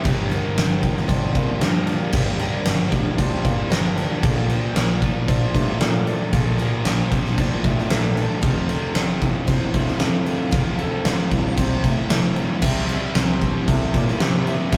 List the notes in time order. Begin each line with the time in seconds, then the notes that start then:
Already playing: G3 A#3 G4 A#4 C5
0.04 G1 G2 D3 D4 G4 F5, kick, crash
0.09 G3
0.30 D3 A#4, crash
0.57 G1 D3, snare, crash
0.83 F3, kick, crash
0.97 snare
1.08 G1 D3 D4 C5, kick, crash
1.35 F2 A#3, kick, crash
1.60 G2 D3 F3 A#4, snare, crash
1.86 F3 D4, crash
2.13 G1 G2 D3 G4, kick, crash
2.17 G3
2.39 D3 A#4, crash
2.65 G1 D3, snare, crash
2.92 D2 F3, kick, crash
3.17 D2 D3 D4 C5, kick, crash
3.45 G1 A#3, kick, crash
3.69 G1 D3 F3 A#4, snare, crash
3.95 F3 D4, crash
4.22 A#1 A#2 F3 A4 F5 A5, kick, crash
4.49 F3 A#4, crash
4.75 A#1 A#2, snare, crash
5.02 F3, kick, crash
5.28 A#1 A#2 D4 C5, kick, crash
5.55 G2 A3, kick, crash
5.80 A#2 F3 A4, snare, crash
6.06 F3 D4, crash
6.32 A#1 A#2 F3 A4 G5, kick, crash
6.58 F3 A#4, crash
6.85 A#1 A#2, snare, crash
7.12 F2 F3, kick, crash
7.25 snare
7.38 F1 A#2 D4 C5, kick, crash
7.64 A#1 A3, kick, crash
7.78 snare
7.90 A#1 A#2 F3 A4, snare, crash
8.16 F3 D4, crash
8.40 F1 F2 E3 F4 C5 F5, kick, crash
8.45 C3
8.69 C3 A4, crash
8.95 F1 C3, snare, crash
9.22 E3, kick, crash
9.47 F1 C3 C4 C5, kick, crash
9.74 D2 A3, kick, crash
9.87 snare
9.99 F2 C3 E3 A4, snare, crash
10.26 E3 C4, crash
10.51 F1 F2 C3 F4, kick, crash
10.79 C3 A4, crash
11.05 F1 C3, snare, crash
11.31 C2 E3, kick, crash
11.57 C2 C3 C4 C5, kick, crash
11.84 F1 A3, kick, crash
12.10 F1 C3 E3 A4, snare, crash
12.36 E3 C4, crash
12.62 C2 C3 G3 E5, kick, crash
12.66 C4
12.89 G3, crash
13.15 C2 C3 C5, snare, crash
13.42 G3, kick, crash
13.67 C2 C3 E4 A4, kick, crash
13.94 A#2 A#3, kick, crash
14.08 snare
14.20 C3 G3 G4, snare, crash
14.46 G3 E4, crash
14.72 C2 C3 E5, kick, crash